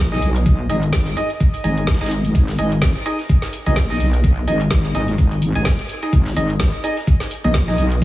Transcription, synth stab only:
0, 0, Header, 1, 2, 480
1, 0, Start_track
1, 0, Key_signature, 5, "minor"
1, 0, Tempo, 472441
1, 467, Time_signature, 4, 2, 24, 8
1, 8172, End_track
2, 0, Start_track
2, 0, Title_t, "Synth stab"
2, 0, Program_c, 0, 62
2, 123, Note_on_c, 0, 63, 89
2, 123, Note_on_c, 0, 68, 82
2, 123, Note_on_c, 0, 75, 100
2, 296, Note_off_c, 0, 63, 0
2, 296, Note_off_c, 0, 68, 0
2, 296, Note_off_c, 0, 75, 0
2, 707, Note_on_c, 0, 63, 93
2, 707, Note_on_c, 0, 68, 82
2, 707, Note_on_c, 0, 75, 98
2, 835, Note_off_c, 0, 63, 0
2, 835, Note_off_c, 0, 68, 0
2, 835, Note_off_c, 0, 75, 0
2, 1186, Note_on_c, 0, 75, 96
2, 1187, Note_on_c, 0, 63, 88
2, 1187, Note_on_c, 0, 68, 82
2, 1315, Note_off_c, 0, 63, 0
2, 1315, Note_off_c, 0, 68, 0
2, 1315, Note_off_c, 0, 75, 0
2, 1666, Note_on_c, 0, 63, 88
2, 1666, Note_on_c, 0, 68, 83
2, 1666, Note_on_c, 0, 75, 99
2, 2010, Note_off_c, 0, 63, 0
2, 2010, Note_off_c, 0, 68, 0
2, 2010, Note_off_c, 0, 75, 0
2, 2043, Note_on_c, 0, 63, 93
2, 2043, Note_on_c, 0, 68, 85
2, 2043, Note_on_c, 0, 75, 99
2, 2141, Note_off_c, 0, 63, 0
2, 2141, Note_off_c, 0, 68, 0
2, 2141, Note_off_c, 0, 75, 0
2, 2627, Note_on_c, 0, 63, 98
2, 2627, Note_on_c, 0, 68, 85
2, 2627, Note_on_c, 0, 75, 107
2, 2755, Note_off_c, 0, 63, 0
2, 2755, Note_off_c, 0, 68, 0
2, 2755, Note_off_c, 0, 75, 0
2, 3106, Note_on_c, 0, 63, 97
2, 3106, Note_on_c, 0, 68, 86
2, 3106, Note_on_c, 0, 75, 106
2, 3235, Note_off_c, 0, 63, 0
2, 3235, Note_off_c, 0, 68, 0
2, 3235, Note_off_c, 0, 75, 0
2, 3723, Note_on_c, 0, 63, 83
2, 3723, Note_on_c, 0, 68, 76
2, 3723, Note_on_c, 0, 75, 93
2, 3821, Note_off_c, 0, 63, 0
2, 3821, Note_off_c, 0, 68, 0
2, 3821, Note_off_c, 0, 75, 0
2, 3964, Note_on_c, 0, 63, 92
2, 3964, Note_on_c, 0, 68, 83
2, 3964, Note_on_c, 0, 75, 99
2, 4136, Note_off_c, 0, 63, 0
2, 4136, Note_off_c, 0, 68, 0
2, 4136, Note_off_c, 0, 75, 0
2, 4547, Note_on_c, 0, 63, 92
2, 4547, Note_on_c, 0, 68, 82
2, 4547, Note_on_c, 0, 75, 102
2, 4675, Note_off_c, 0, 63, 0
2, 4675, Note_off_c, 0, 68, 0
2, 4675, Note_off_c, 0, 75, 0
2, 5027, Note_on_c, 0, 63, 90
2, 5027, Note_on_c, 0, 68, 80
2, 5027, Note_on_c, 0, 75, 97
2, 5155, Note_off_c, 0, 63, 0
2, 5155, Note_off_c, 0, 68, 0
2, 5155, Note_off_c, 0, 75, 0
2, 5643, Note_on_c, 0, 63, 88
2, 5643, Note_on_c, 0, 68, 78
2, 5643, Note_on_c, 0, 80, 95
2, 5741, Note_off_c, 0, 63, 0
2, 5741, Note_off_c, 0, 68, 0
2, 5741, Note_off_c, 0, 80, 0
2, 6123, Note_on_c, 0, 63, 80
2, 6124, Note_on_c, 0, 68, 73
2, 6124, Note_on_c, 0, 75, 85
2, 6221, Note_off_c, 0, 63, 0
2, 6221, Note_off_c, 0, 68, 0
2, 6221, Note_off_c, 0, 75, 0
2, 6467, Note_on_c, 0, 63, 97
2, 6467, Note_on_c, 0, 68, 86
2, 6467, Note_on_c, 0, 75, 107
2, 6595, Note_off_c, 0, 63, 0
2, 6595, Note_off_c, 0, 68, 0
2, 6595, Note_off_c, 0, 75, 0
2, 6947, Note_on_c, 0, 63, 96
2, 6947, Note_on_c, 0, 68, 89
2, 6947, Note_on_c, 0, 75, 105
2, 7075, Note_off_c, 0, 63, 0
2, 7075, Note_off_c, 0, 68, 0
2, 7075, Note_off_c, 0, 75, 0
2, 7563, Note_on_c, 0, 63, 81
2, 7563, Note_on_c, 0, 68, 73
2, 7563, Note_on_c, 0, 75, 90
2, 7661, Note_off_c, 0, 63, 0
2, 7661, Note_off_c, 0, 68, 0
2, 7661, Note_off_c, 0, 75, 0
2, 7803, Note_on_c, 0, 63, 89
2, 7803, Note_on_c, 0, 68, 81
2, 7803, Note_on_c, 0, 75, 97
2, 7976, Note_off_c, 0, 63, 0
2, 7976, Note_off_c, 0, 68, 0
2, 7976, Note_off_c, 0, 75, 0
2, 8172, End_track
0, 0, End_of_file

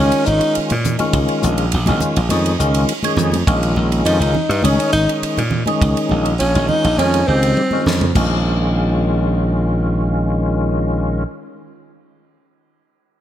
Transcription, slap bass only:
0, 0, Header, 1, 3, 480
1, 0, Start_track
1, 0, Key_signature, -5, "minor"
1, 0, Tempo, 584795
1, 928, Time_signature, 4, 2, 24, 8
1, 10842, End_track
2, 0, Start_track
2, 0, Title_t, "Slap bass"
2, 0, Program_c, 0, 36
2, 0, Note_on_c, 0, 37, 77
2, 86, Note_off_c, 0, 37, 0
2, 222, Note_on_c, 0, 32, 69
2, 321, Note_off_c, 0, 32, 0
2, 587, Note_on_c, 0, 46, 73
2, 785, Note_off_c, 0, 46, 0
2, 931, Note_on_c, 0, 37, 78
2, 1035, Note_off_c, 0, 37, 0
2, 1179, Note_on_c, 0, 34, 71
2, 1378, Note_off_c, 0, 34, 0
2, 1426, Note_on_c, 0, 34, 72
2, 1523, Note_off_c, 0, 34, 0
2, 1544, Note_on_c, 0, 34, 80
2, 1638, Note_off_c, 0, 34, 0
2, 1778, Note_on_c, 0, 34, 73
2, 1874, Note_off_c, 0, 34, 0
2, 1894, Note_on_c, 0, 41, 75
2, 2096, Note_off_c, 0, 41, 0
2, 2132, Note_on_c, 0, 37, 80
2, 2334, Note_off_c, 0, 37, 0
2, 2602, Note_on_c, 0, 41, 79
2, 2808, Note_off_c, 0, 41, 0
2, 2854, Note_on_c, 0, 34, 80
2, 3055, Note_off_c, 0, 34, 0
2, 3091, Note_on_c, 0, 34, 77
2, 3294, Note_off_c, 0, 34, 0
2, 3326, Note_on_c, 0, 41, 72
2, 3431, Note_off_c, 0, 41, 0
2, 3448, Note_on_c, 0, 37, 68
2, 3548, Note_off_c, 0, 37, 0
2, 3687, Note_on_c, 0, 43, 68
2, 3788, Note_off_c, 0, 43, 0
2, 3806, Note_on_c, 0, 37, 75
2, 3911, Note_off_c, 0, 37, 0
2, 4046, Note_on_c, 0, 32, 65
2, 4151, Note_off_c, 0, 32, 0
2, 4414, Note_on_c, 0, 46, 68
2, 4617, Note_off_c, 0, 46, 0
2, 4777, Note_on_c, 0, 37, 75
2, 4877, Note_off_c, 0, 37, 0
2, 5015, Note_on_c, 0, 34, 71
2, 5216, Note_off_c, 0, 34, 0
2, 5257, Note_on_c, 0, 34, 71
2, 5357, Note_off_c, 0, 34, 0
2, 5381, Note_on_c, 0, 34, 70
2, 5475, Note_off_c, 0, 34, 0
2, 5617, Note_on_c, 0, 34, 65
2, 5713, Note_off_c, 0, 34, 0
2, 5731, Note_on_c, 0, 41, 68
2, 5933, Note_off_c, 0, 41, 0
2, 5975, Note_on_c, 0, 37, 71
2, 6175, Note_off_c, 0, 37, 0
2, 6455, Note_on_c, 0, 41, 69
2, 6656, Note_off_c, 0, 41, 0
2, 6696, Note_on_c, 0, 34, 75
2, 9222, Note_off_c, 0, 34, 0
2, 10842, End_track
3, 0, Start_track
3, 0, Title_t, "Muted slap bass strokes"
3, 470, Note_on_c, 9, 29, 31
3, 552, Note_off_c, 9, 29, 0
3, 4288, Note_on_c, 9, 29, 31
3, 4371, Note_off_c, 9, 29, 0
3, 10842, End_track
0, 0, End_of_file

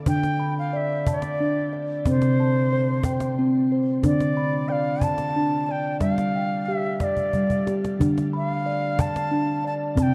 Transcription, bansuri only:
0, 0, Header, 1, 2, 480
1, 0, Start_track
1, 0, Tempo, 658617
1, 58, Time_signature, 6, 3, 24, 8
1, 7392, End_track
2, 0, Start_track
2, 0, Title_t, "Bansuri"
2, 0, Program_c, 0, 73
2, 57, Note_on_c, 0, 79, 93
2, 394, Note_off_c, 0, 79, 0
2, 428, Note_on_c, 0, 77, 80
2, 555, Note_on_c, 0, 76, 83
2, 566, Note_off_c, 0, 77, 0
2, 789, Note_off_c, 0, 76, 0
2, 818, Note_on_c, 0, 74, 76
2, 1253, Note_off_c, 0, 74, 0
2, 1523, Note_on_c, 0, 72, 102
2, 2447, Note_off_c, 0, 72, 0
2, 2954, Note_on_c, 0, 74, 91
2, 3415, Note_on_c, 0, 79, 81
2, 3426, Note_off_c, 0, 74, 0
2, 3439, Note_on_c, 0, 77, 88
2, 3446, Note_off_c, 0, 79, 0
2, 3666, Note_on_c, 0, 81, 104
2, 3677, Note_off_c, 0, 77, 0
2, 4128, Note_off_c, 0, 81, 0
2, 4128, Note_on_c, 0, 81, 81
2, 4163, Note_on_c, 0, 79, 88
2, 4170, Note_off_c, 0, 81, 0
2, 4371, Note_off_c, 0, 79, 0
2, 4375, Note_on_c, 0, 77, 93
2, 4851, Note_on_c, 0, 76, 81
2, 4862, Note_off_c, 0, 77, 0
2, 5098, Note_off_c, 0, 76, 0
2, 5098, Note_on_c, 0, 76, 67
2, 5131, Note_on_c, 0, 74, 73
2, 5138, Note_off_c, 0, 76, 0
2, 5641, Note_off_c, 0, 74, 0
2, 6099, Note_on_c, 0, 77, 89
2, 6564, Note_on_c, 0, 81, 101
2, 6575, Note_off_c, 0, 77, 0
2, 7032, Note_off_c, 0, 81, 0
2, 7048, Note_on_c, 0, 81, 90
2, 7099, Note_off_c, 0, 81, 0
2, 7282, Note_on_c, 0, 81, 88
2, 7306, Note_on_c, 0, 79, 96
2, 7314, Note_off_c, 0, 81, 0
2, 7392, Note_off_c, 0, 79, 0
2, 7392, End_track
0, 0, End_of_file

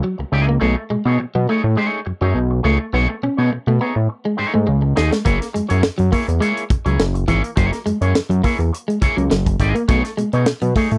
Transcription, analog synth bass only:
0, 0, Header, 1, 2, 480
1, 0, Start_track
1, 0, Tempo, 579374
1, 514, Time_signature, 4, 2, 24, 8
1, 9098, End_track
2, 0, Start_track
2, 0, Title_t, "Analog synth bass"
2, 0, Program_c, 0, 38
2, 158, Note_on_c, 0, 37, 56
2, 204, Note_off_c, 0, 37, 0
2, 267, Note_on_c, 0, 37, 80
2, 484, Note_off_c, 0, 37, 0
2, 511, Note_on_c, 0, 35, 96
2, 625, Note_off_c, 0, 35, 0
2, 749, Note_on_c, 0, 47, 53
2, 801, Note_off_c, 0, 47, 0
2, 873, Note_on_c, 0, 47, 97
2, 977, Note_off_c, 0, 47, 0
2, 990, Note_on_c, 0, 47, 52
2, 1042, Note_off_c, 0, 47, 0
2, 1118, Note_on_c, 0, 47, 94
2, 1220, Note_off_c, 0, 47, 0
2, 1358, Note_on_c, 0, 45, 93
2, 1460, Note_off_c, 0, 45, 0
2, 1711, Note_on_c, 0, 42, 52
2, 1762, Note_off_c, 0, 42, 0
2, 1834, Note_on_c, 0, 42, 86
2, 1937, Note_off_c, 0, 42, 0
2, 1945, Note_on_c, 0, 35, 83
2, 2163, Note_off_c, 0, 35, 0
2, 2191, Note_on_c, 0, 37, 97
2, 2305, Note_off_c, 0, 37, 0
2, 2429, Note_on_c, 0, 35, 105
2, 2544, Note_off_c, 0, 35, 0
2, 2675, Note_on_c, 0, 47, 53
2, 2725, Note_off_c, 0, 47, 0
2, 2803, Note_on_c, 0, 47, 97
2, 2903, Note_off_c, 0, 47, 0
2, 2917, Note_on_c, 0, 47, 48
2, 2967, Note_off_c, 0, 47, 0
2, 3042, Note_on_c, 0, 47, 107
2, 3142, Note_off_c, 0, 47, 0
2, 3280, Note_on_c, 0, 45, 76
2, 3381, Note_off_c, 0, 45, 0
2, 3637, Note_on_c, 0, 44, 51
2, 3687, Note_off_c, 0, 44, 0
2, 3768, Note_on_c, 0, 44, 82
2, 3865, Note_off_c, 0, 44, 0
2, 3880, Note_on_c, 0, 37, 90
2, 4091, Note_off_c, 0, 37, 0
2, 4124, Note_on_c, 0, 39, 73
2, 4233, Note_off_c, 0, 39, 0
2, 4360, Note_on_c, 0, 30, 105
2, 4470, Note_off_c, 0, 30, 0
2, 4603, Note_on_c, 0, 42, 52
2, 4652, Note_off_c, 0, 42, 0
2, 4728, Note_on_c, 0, 42, 104
2, 4825, Note_off_c, 0, 42, 0
2, 4841, Note_on_c, 0, 42, 46
2, 4890, Note_off_c, 0, 42, 0
2, 4966, Note_on_c, 0, 42, 107
2, 5064, Note_off_c, 0, 42, 0
2, 5205, Note_on_c, 0, 40, 84
2, 5303, Note_off_c, 0, 40, 0
2, 5555, Note_on_c, 0, 37, 49
2, 5606, Note_off_c, 0, 37, 0
2, 5682, Note_on_c, 0, 37, 90
2, 5782, Note_off_c, 0, 37, 0
2, 5793, Note_on_c, 0, 30, 98
2, 6007, Note_off_c, 0, 30, 0
2, 6035, Note_on_c, 0, 32, 89
2, 6148, Note_off_c, 0, 32, 0
2, 6274, Note_on_c, 0, 30, 110
2, 6387, Note_off_c, 0, 30, 0
2, 6516, Note_on_c, 0, 42, 55
2, 6566, Note_off_c, 0, 42, 0
2, 6639, Note_on_c, 0, 42, 107
2, 6740, Note_off_c, 0, 42, 0
2, 6751, Note_on_c, 0, 42, 50
2, 6803, Note_off_c, 0, 42, 0
2, 6872, Note_on_c, 0, 42, 102
2, 6977, Note_off_c, 0, 42, 0
2, 7116, Note_on_c, 0, 40, 84
2, 7219, Note_off_c, 0, 40, 0
2, 7474, Note_on_c, 0, 37, 50
2, 7525, Note_off_c, 0, 37, 0
2, 7602, Note_on_c, 0, 37, 81
2, 7702, Note_off_c, 0, 37, 0
2, 7715, Note_on_c, 0, 30, 89
2, 7928, Note_off_c, 0, 30, 0
2, 7953, Note_on_c, 0, 32, 87
2, 8067, Note_off_c, 0, 32, 0
2, 8193, Note_on_c, 0, 35, 99
2, 8307, Note_off_c, 0, 35, 0
2, 8433, Note_on_c, 0, 47, 56
2, 8484, Note_off_c, 0, 47, 0
2, 8561, Note_on_c, 0, 47, 102
2, 8661, Note_off_c, 0, 47, 0
2, 8674, Note_on_c, 0, 47, 50
2, 8725, Note_off_c, 0, 47, 0
2, 8799, Note_on_c, 0, 47, 95
2, 8900, Note_off_c, 0, 47, 0
2, 9044, Note_on_c, 0, 45, 99
2, 9098, Note_off_c, 0, 45, 0
2, 9098, End_track
0, 0, End_of_file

